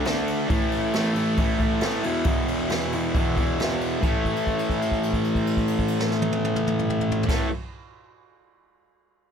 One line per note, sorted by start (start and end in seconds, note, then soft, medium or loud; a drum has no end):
0.05 0.48 D3 medium
0.05 0.49 A3 medium
0.05 snare loud
0.05 ride medium
0.09 0.50 D4 medium
0.27 ride medium
0.48 0.93 A2 medium
0.48 0.96 E3 medium
0.48 0.96 A3 loud
0.48 kick loud
0.48 ride medium
0.72 ride medium
0.93 1.37 A2 medium
0.93 1.18 E3 medium
0.93 snare loud
0.93 ride loud
0.97 1.13 A3 medium
1.14 1.40 A3 medium
1.14 ride medium
1.18 1.39 E3 medium
1.37 1.81 A2 medium
1.37 1.62 E3 medium
1.37 1.58 A3 loud
1.37 kick loud
1.37 ride medium
1.59 1.83 E3 medium
1.59 1.84 A3 medium
1.59 kick medium
1.59 ride medium
1.81 2.03 A2 medium
1.81 2.03 E3 medium
1.81 snare loud
1.81 ride medium
1.86 2.04 A3 medium
2.03 2.24 E2 medium
2.03 2.26 B2 medium
2.03 2.26 E3 medium
2.03 ride medium
2.24 2.68 E2 medium
2.24 2.70 B2 medium
2.24 2.71 E3 medium
2.24 kick loud
2.24 ride loud
2.48 ride medium
2.69 3.13 E2 medium
2.69 2.95 B2 medium
2.69 2.93 E3 medium
2.69 snare loud
2.69 ride medium
2.92 3.16 B2 medium
2.92 3.17 E3 medium
2.92 ride medium
3.15 3.58 E2 medium
3.15 3.39 B2 medium
3.15 3.36 E3 loud
3.15 kick loud
3.15 ride medium
3.37 3.60 B2 medium
3.37 3.62 E3 medium
3.37 kick medium
3.37 ride medium
3.59 4.01 E2 medium
3.59 4.02 B2 medium
3.59 4.03 E3 medium
3.59 snare loud
3.59 ride medium
3.81 ride medium
4.02 7.25 A2 medium
4.02 7.28 E3 medium
4.02 7.29 A3 loud
4.02 kick medium
4.02 crash medium
4.25 kick medium
4.25 crash soft
4.36 crash soft
4.47 kick medium
4.47 crash soft
4.59 crash soft
4.69 kick medium
4.69 crash soft
4.82 crash soft
4.92 kick medium
4.92 crash soft
5.03 crash soft
5.13 kick medium
5.13 crash soft
5.24 crash soft
5.35 kick medium
5.35 crash soft
5.47 crash medium
5.57 kick medium
5.57 crash medium
5.68 crash soft
5.79 kick medium
5.79 crash soft
5.88 crash medium
6.00 snare loud
6.12 snare medium
6.22 high tom medium
6.32 high tom medium
6.45 high tom medium
6.56 mid tom medium
6.67 mid tom medium
6.79 mid tom loud
6.90 mid tom medium
7.01 mid tom medium
7.12 floor tom loud
7.23 7.46 A2 medium
7.23 floor tom loud
7.28 7.48 E3 loud
7.28 7.48 A3 loud
7.28 kick loud
7.28 snare medium
7.28 crash loud